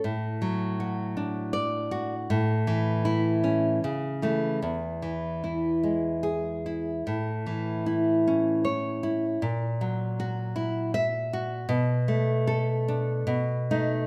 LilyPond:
\new Staff \with { instrumentName = "Nylon-string guitar" } { \time 3/4 \key a \major \tempo 4 = 77 << { r2 d''4 | r4 e'4 r8 a8 | r2 gis'4 | r2 cis''4 |
r2 e''4 | r4 a'4 r8 dis'8 | } \\ { a,8 fis8 fis'8 d'4 fis'8 | a,8 e4 cis'8 cis8 e8 | e,8 e8 e'8 gis4 e'8 | a,8 e8 e'8 cis'4 e'8 |
ais,8 fis8 fis'8 e'4 fis'8 | b,8 a4 d'8 b,8 a8 | } >> }